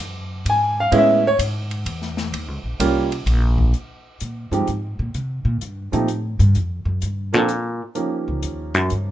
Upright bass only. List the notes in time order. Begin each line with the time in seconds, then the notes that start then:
0.00 F#2
0.45 G#2
0.92 A2
1.39 G#2
1.86 E2
2.32 D#2
2.48 C#2
2.64 A#1
2.80 C2
3.26 A#1
4.22 A#2
4.51 G2
4.68 G#2
4.99 A#2
5.15 C3
5.45 A#2
5.62 G2
5.93 A#2
6.09 A2
6.39 G2
6.56 F2
6.85 F#2
7.03 G2
7.34 A#2
8.28 C#2
8.44 D#2
8.75 F#2
8.92 G2